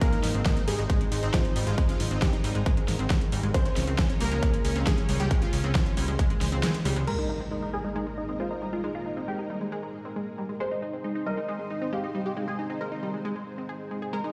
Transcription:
0.01 G#3 A#3 C4 D#4 A#4 C5, kick, closed hi-hat
0.12 G#3 D#4, closed hi-hat
0.23 G#1 D#4, snare, open hi-hat
0.35 G#1 C4, closed hi-hat
0.46 G#3 D#4, kick, snare, closed hi-hat
0.56 D#4, closed hi-hat
0.68 G#1 G3 G#3 G#4, open hi-hat
0.79 G#1 G#3 D#4, closed hi-hat
0.90 G#3 D#4, kick, closed hi-hat
1.01 G#3, closed hi-hat
1.12 G#1 D#4, open hi-hat
1.23 G#1 C4 D#4, closed hi-hat
1.34 F3 G#3 C4 F4 C5, kick, snare, closed hi-hat
1.45 D#4, closed hi-hat
1.56 G#1 G3 D#4, open hi-hat
1.67 G#1 F3 G#3 F4, closed hi-hat
1.78 G#3 D#4 A#4, kick, closed hi-hat
1.89 F3 G#3 F4, closed hi-hat
2.00 G#1 D#4, open hi-hat
2.11 G#1 C4 D#4, closed hi-hat
2.22 G3 G#3 G4, kick, snare, closed hi-hat
2.33 D#4, closed hi-hat
2.44 G#1 G3 D#4, open hi-hat
2.55 G#1 G#3, closed hi-hat
2.66 G#3, kick, closed hi-hat
2.77 G#3, closed hi-hat
2.88 G#1, snare, open hi-hat
2.99 G#1 C4, closed hi-hat
3.10 G#3, kick, snare, closed hi-hat
3.21 closed hi-hat
3.32 G#1 G3, open hi-hat
3.43 G#1 G#3, closed hi-hat
3.54 G#3 A#3 C4 F4 A#4 C5, kick, closed hi-hat
3.65 G#3 C#4, closed hi-hat
3.76 C#2 C#4, snare, open hi-hat
3.87 C#2 C4, closed hi-hat
3.98 G#3 C#4, kick, snare, closed hi-hat
4.09 C#4, closed hi-hat
4.20 C#2 G3 A#3 A#4, open hi-hat
4.32 C#2 G#3 C#4, closed hi-hat
4.43 G#3 C#4, kick, closed hi-hat
4.54 G#3, closed hi-hat
4.65 C#2 C#4, open hi-hat
4.76 C#2 C4 C#4, closed hi-hat
4.87 G#3 G#4, kick, snare, closed hi-hat
4.98 C#4, closed hi-hat
5.09 C#2 G3 C#4, open hi-hat
5.20 C#2 G3 G#3 G4, closed hi-hat
5.31 G#3 C#4 C5, kick, closed hi-hat
5.42 F3 G#3 F4, closed hi-hat
5.53 C#2 C#4, open hi-hat
5.64 C#2 C4 C#4, closed hi-hat
5.75 F3 G#3 F4, kick, snare, closed hi-hat
5.86 C#4, closed hi-hat
5.97 C#2 G3 C#4, open hi-hat
6.08 C#2 G#3, closed hi-hat
6.19 G#3, kick, closed hi-hat
6.30 G#3, closed hi-hat
6.41 C#2, snare, open hi-hat
6.52 C#2 C4, closed hi-hat
6.63 G#3, snare, closed hi-hat
6.74 closed hi-hat
6.85 C#2 G3, open hi-hat
6.96 C#2 G#3, closed hi-hat
7.07 G#3 A#3 D#4 A#4, crash, impact
7.18 G#3 D#4
7.29 D#4
7.40 C4
7.51 G#3 D#4
7.62 D#4
7.73 G3 G#4
7.85 G#3 D#4
7.96 G#3 D#4
8.07 G#3
8.18 D#4
8.29 C4 D#4
8.40 G#3 F4 C5
8.51 D#4
8.62 G3 D#4
8.73 G#3 F4
8.84 G#3 D#4
8.95 G#3 F4
9.06 D#4
9.17 C4 D#4
9.28 G#3 G4
9.39 D#4
9.50 G3 D#4
9.61 G#3
9.72 G#3
9.83 G#3
10.05 C4
10.16 G#3
10.38 G3
10.49 G#3
10.60 G#3 C4 D#4 C5
10.71 G#3 D#4
10.82 D#4
10.93 C4
11.04 G#3 D#4
11.15 D#4
11.26 G3 A#4 D#5
11.37 G#3 D#4
11.48 G#3 D#4
11.60 G#3
11.70 D#4
11.82 C4 D#4
11.93 G#3 G4 F5
12.04 D#4
12.15 G3 D#4
12.26 G#3 G4
12.37 G#3 D#4
12.48 G#3 G#4
12.59 D#4
12.70 C4 D#4
12.81 G#3 A#4
12.92 D#4
13.03 G3 D#4
13.14 G#3
13.25 G#3
13.36 G#3
13.58 C4
13.69 G#4
13.91 G#3
14.02 G#4
14.13 G#3 A#3 A#4
14.24 G#3 D#4

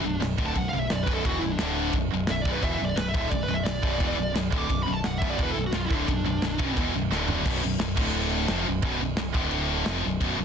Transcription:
Already playing: D4
0.04 B0 B1 F#2
0.20 B0 B1 F#2, snare, crash
0.38 D1 D2 A2 D3, kick
0.46 A5
0.55 B0 B1 F#2 F#5, kick, crash
0.69 F5
0.73 B0 B1 F#2
0.79 E5
0.90 B0 B1 F#2 D5, snare, crash
1.03 B1 F#2 B4, kick
1.08 B0 B2
1.14 A4
1.25 E1 E2 B2 E3 F#4, kick, crash
1.39 B1 F#2 E4
1.43 B0
1.52 D4
1.59 D1 D2 A2 D3 D4, snare, crash
1.93 B0 B1 F#2, kick, crash
2.12 B0 B1 F#2
2.27 B0 B1 F#2, snare, crash
2.31 E5
2.42 B0 D5, kick
2.47 B1 F#2 B2
2.52 B4
2.62 E1 E2 B2 E3 E5, kick, crash
2.73 E5
2.79 B0 B1 F#2
2.85 D5
2.96 B0 B1 F#2 B4, snare, crash
3.09 E5
3.14 D1 D2 A2 D3, kick
3.18 E5
3.30 B0 B1 F#2 D5, kick, crash
3.43 B4
3.48 B0 B1 F#2
3.54 E5
3.63 B0 B1 F#2 D5, snare, crash
3.83 B0 B1 F#2 B2, kick
3.99 E1 E2 B2 E3, kick, crash
4.17 B0 B1 F#2
4.35 B0 B1 F#2, snare, crash
4.52 D1 D2 A2 D3, kick
4.58 D6
4.69 B0 B1 F#2, kick, crash
4.83 B5
4.87 B0 B1 F#2
4.92 A5
5.04 B0 B1 F#2 F#5, snare, crash
5.18 B0 B1 E5, kick
5.23 F#2 B2
5.30 D5
5.39 E1 E2 B2 E3, kick, crash
5.43 B4
5.52 A4
5.56 B0 B1 F#2
5.66 F#4
5.72 B0 B1 F#2 F4, snare, crash
5.86 D2 D3 E4
5.90 D1 D2 A2 D3 D4, kick
6.08 B0 B1 F#2 D4, kick, crash
6.26 B0 B1 F#2
6.42 B0 B1 F#2, snare, crash
6.58 B0 B1 F#2 B2, kick
6.77 E1 E2 B2 E3, kick, crash
6.94 B0 B1 F#2
7.10 D1 D2 A2 D3, snare
7.28 floor tom
7.45 B0 B1 F#2 B2, kick, crash
7.63 B0 B1 F#2
7.79 B0 B1 F#2, snare, crash
7.97 D1 D2 A2 D3, kick, crash
8.15 crash
8.48 F1 F2 C3 F3, snare, crash
8.66 B0 B1 F#2
8.82 B0 B1 F#2 B2, kick, crash
9.00 B0 B1 F#2
9.17 B0 B1 F#2, snare, crash
9.34 D1 D2 A2 D3, kick
9.51 crash
9.86 F1 F2 C3 F3, snare, crash
10.05 B0 B1 F#2
10.20 B0 B1 F#2 B2, kick, crash
10.37 B0 B1 F#2

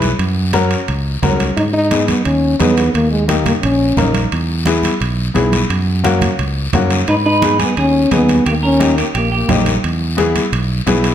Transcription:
Already playing: B1
0.02 high conga, high timbale, short guiro
0.19 F#2, high timbale, long guiro
0.37 high conga
0.53 C#4 F#4 A#4, high conga, high timbale, short guiro
0.71 high timbale, short guiro
0.88 C#2, high conga, high timbale, long guiro
1.22 C#2 C#4 F#4 A#4, high conga, low conga, high timbale, low timbale, short guiro
1.40 high conga, high timbale, short guiro
1.56 G#2 D#4, high timbale, long guiro
1.73 D#4, high conga
1.91 B3 D#4 G#4, high conga, high timbale, short guiro
2.08 B3, high conga, high timbale, short guiro
2.25 D#2 C#4, high conga, high timbale, long guiro
2.59 E2 B3 D#4 G#4, high conga, high timbale, low timbale, short guiro
2.77 high timbale, short guiro
2.94 D#2 A#3, high timbale, long guiro
3.11 G#3, high conga
3.28 A#3 D#4 G4, high conga, high timbale, short guiro
3.45 A#3, high conga, low conga, high timbale, short guiro
3.62 A#1 C#4, high conga, high timbale, long guiro
3.97 A#1 A#3 D#4 A#4, high conga, low conga, high timbale, low timbale, short guiro
4.14 high conga, high timbale, short guiro
4.32 E2, high timbale, long guiro
4.49 high conga
4.66 B3 E4 G#4, high conga, high timbale, short guiro
4.83 high conga, high timbale, short guiro
5.00 B1, high conga, high timbale, long guiro
5.34 B1 B3 E4 G#4, high conga, high timbale, low timbale, short guiro
5.52 high conga, high timbale, short guiro
5.70 F#2, high timbale, long guiro
5.87 high conga
6.04 A#3 C#4 F#4, high conga, high timbale, short guiro
6.21 high conga, low conga, high timbale, short guiro
6.39 C#2, high conga, high timbale, long guiro
6.73 F#2 A#3 C#4 F#4, high conga, low conga, high timbale, low timbale, short guiro
6.90 high timbale, short guiro
7.07 G#2 D#4 B4, high timbale, long guiro
7.25 D#4 B4, high conga
7.42 B3 D#4 G#4, high conga, high timbale, short guiro
7.59 B3 G#4, high conga, high timbale, short guiro
7.77 D#2 C#4 G#4, high conga, high timbale, long guiro
8.11 D#2 B3 D#4 G#4, high conga, high timbale, low timbale, short guiro
8.29 high conga, high timbale, short guiro
8.46 D#2 A#3 G4, high timbale, long guiro
8.63 C#4 A#4, high conga
8.80 A#3 D#4 G4, high conga, high timbale, short guiro
8.98 A#3 G4, high timbale, short guiro
9.14 A#1 A#3 G4, high conga, high timbale, long guiro
9.32 A#3 G4
9.48 A#1 A#3 D#4 G4, high conga, low conga, high timbale, low timbale, short guiro
9.66 high conga, high timbale, short guiro
9.84 E2, high timbale, long guiro
10.01 high conga
10.17 B3 E4 G#4, high conga, high timbale, short guiro
10.36 high conga, high timbale, short guiro
10.52 B1, high conga, high timbale, long guiro
10.87 B1 B3 E4 G#4, high conga, high timbale, low timbale, short guiro
11.04 high timbale, short guiro

